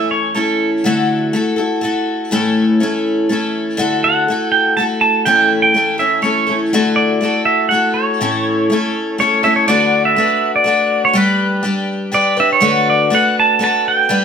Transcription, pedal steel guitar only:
0.11 C#5
0.35 A4
4.04 F#5
4.52 G5
4.77 A5
5.01 A5
5.25 G5
5.62 G5
5.99 E5
6.23 C#5
6.96 D5
7.45 E5
7.69 F#5
7.94 C#5
9.20 C#5
9.44 E5
9.56 C#5
9.68 D5
10.05 E5
10.56 D5
11.05 C#5
11.17 B4
12.14 D5
12.40 E5
12.53 C#5
12.90 D5
13.15 F#5
13.40 A5
13.64 A5
13.88 G5

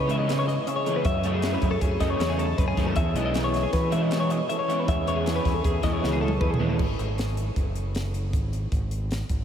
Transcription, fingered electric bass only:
Already playing: C#3
1.05 F#2
1.62 F#2
1.81 F#2
2.01 F#2
2.19 E2
2.58 F#2
2.77 F#2
2.97 E2
3.14 B1
3.73 E3
4.88 E2
5.45 E2
5.65 E2
5.83 E2
6.03 C#2
6.40 E2
6.59 D#2
6.80 G#1
6.99 G#1
7.56 F#1
8.33 G#1
8.72 G#1
9.30 G#1

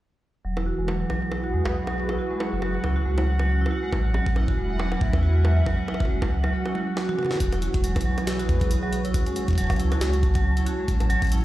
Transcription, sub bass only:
0.45 E1
0.79 E1
1.10 B1
1.53 E2
1.66 B1
2.53 F#1
2.84 C#2
3.06 C#2
3.93 A1
4.26 A1
4.58 E1
5.01 A2
5.13 E2
6.00 F#1
6.32 C#2
7.40 E1
7.74 E1
8.06 B1
8.49 E2
8.61 B1
9.48 F#1
9.80 C#2
10.01 C#2
10.88 A1
11.22 A1

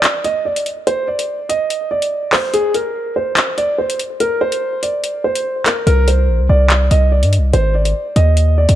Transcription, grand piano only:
Already playing: D5
0.25 D#5
0.45 D5
0.87 C5
1.08 D5
1.49 D#5
1.91 D5
2.33 C5
2.54 G#4
2.74 A#4
3.16 C5
3.58 D5
3.78 C5
4.20 A#4
4.41 C5
4.83 D5
5.24 C5
5.66 A#4
5.87 A#4
6.08 C5
6.49 D5
6.91 D#5
7.12 D5
7.53 C5
7.75 D5
8.16 D#5
8.58 D5

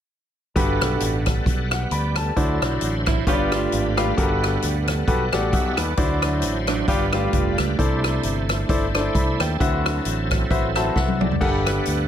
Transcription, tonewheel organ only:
0.56 G3 B3 A4 F#5
1.72 F#5
1.92 D5
2.18 A4
2.37 F#3 D4 E4 C5
3.28 G3 D4 F4 B4
4.16 G3 B3 A4 F#5
5.52 E5
5.78 D5
5.98 F#3 D4 E4 C5
6.89 G3 D4 F4 B4
7.80 A3 D4 E4 C5
8.94 G5
9.15 E5
9.41 A5
9.58 F#3 C4 E4 A4
11.41 G3 B3 A4 F#5

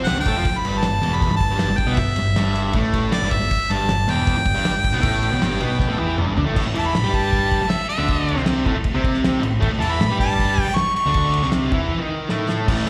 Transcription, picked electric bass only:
0.08 C2
0.18 D2
0.27 A2
0.37 F2
0.65 G1
0.83 G1
1.02 E1
1.30 G1
1.51 G1
1.69 G1
1.87 B1
1.97 G1
2.17 G1
2.36 G1
2.74 A1
3.22 G1
3.31 G1
3.70 G1
3.90 G1
4.08 E1
4.38 G1
4.56 G1
4.75 G1
4.94 B1
5.04 A1
5.32 B1
5.42 G1
5.61 B1
5.88 A1
6.00 E2
6.18 E1
6.28 G1
6.37 D2
6.47 A1
6.56 A1
6.67 A1
6.77 E2
6.93 A1
7.05 G2
7.61 muted picked electric bass stroke
7.98 D2
8.37 C2
8.66 A1
8.76 muted picked electric bass stroke
8.95 C2
9.42 A1
9.62 A1
9.70 A1
9.81 E2
10.00 A1
10.08 G2
10.68 muted picked electric bass stroke
11.06 D2
11.43 C2
11.72 E2
12.68 A1

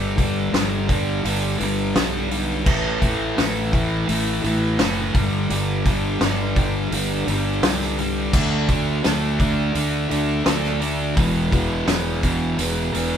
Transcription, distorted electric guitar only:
Already playing: G2 D3 G3
0.16 G2 D3 G3
0.53 G2 D3 G3
0.89 G2 D3 G3
1.24 G2 D3 G3
1.58 G2 D3 G3
1.94 G2 D3 G3
2.30 G2 D3 G3
2.66 A2 E3 A3
3.02 A2 E3 A3
3.37 A2 E3 A3
3.72 A2 E3 A3
4.08 A2 E3 A3
4.43 A2 E3 A3
4.79 A2 E3 A3
5.14 G2 D3 G3
5.51 G2 D3 G3
5.86 G2 D3 G3
6.22 G2 D3 G3
6.56 G2 D3 G3
6.92 G2 D3 G3
7.27 G2 D3 G3
7.64 G2 D3 G3
7.98 G2 D3 G3
8.34 D3 A3 D4
8.69 D3 A3 D4
9.04 D3 A3 D4
9.39 D3 A3 D4
9.75 D3 A3 D4
10.10 D3 A3 D4
10.45 D3 A3 D4
10.80 D3 A3 D4
11.15 E2 B2 E3
11.51 E2 B2 E3
11.87 E2 B2 E3
12.23 E2 B2 E3
12.59 E2 B2 E3
12.93 E2 B2 E3

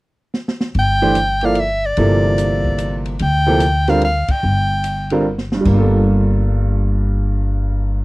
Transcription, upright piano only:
1.02 E3 A3 D4 G4 C5
1.42 F3 A#3 E4 A4 D5
1.97 C3 F3 A#3 E4 A4
3.46 C3 F3 A#3 E4 A4
3.88 D3 G3 C4 F4 A#4
5.11 D3 G3 C4 F4 A#4
5.54 G2
5.61 G3
5.67 A#3
5.73 F4
5.79 A4

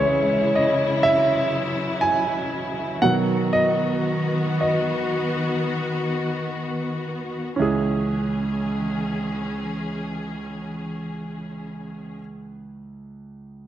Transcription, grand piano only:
Already playing: C#3 E3 G#3 C#5 E5
0.55 D#5
1.03 E5
2.01 G#5
3.02 B2 D#3 F#3 F#5
3.53 D#5
4.61 D#5
7.56 C#2 C#4 E4
7.62 G#4

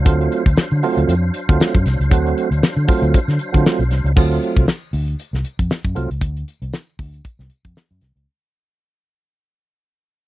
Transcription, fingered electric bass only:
0.06 D2
0.46 D2
0.72 D3
0.97 D2
1.08 F2
1.49 D2
1.75 F#2
1.86 C2
2.00 C#2
2.11 D2
2.51 D2
2.62 muted fingered electric bass stroke
2.77 D3
3.02 D2
3.28 D3
3.54 D3
3.79 B1
3.90 C2
4.04 C#2
4.17 D2
4.57 C2
4.93 D2
5.33 C2
5.59 F2
5.85 F#2
5.96 C2
6.11 C#2
6.21 D2
6.62 C2
6.99 D2
7.39 C2
7.65 F2
7.91 F#2
8.01 C2
8.16 C#2

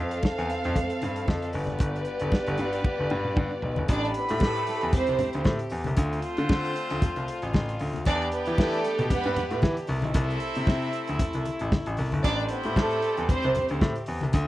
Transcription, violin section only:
Already playing: C4 A4 F5
1.53 B3 G4 D5
3.89 D4 D5
4.16 B3 B4
4.43 A3 A4
4.95 C4 C5
8.07 D4 D5
8.32 B3 B4
8.58 A3 A4
9.10 B3 B4
12.23 D4 D5
12.50 B3 B4
12.77 A3 A4
13.30 C4 C5

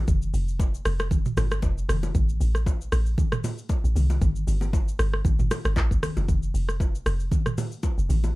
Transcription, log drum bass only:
0.08 F1
0.34 F1
0.85 F1
1.37 G1
1.63 F1
1.89 F1
2.15 A1
2.41 A1
2.92 A1
3.84 A1
3.96 C2
4.22 G1
4.47 G1
4.99 G1
5.25 A1
5.39 G1
5.65 G1
5.76 A1
5.91 G1
6.17 F1
6.29 F1
6.54 F1
7.06 F1
7.98 F1
8.09 A1

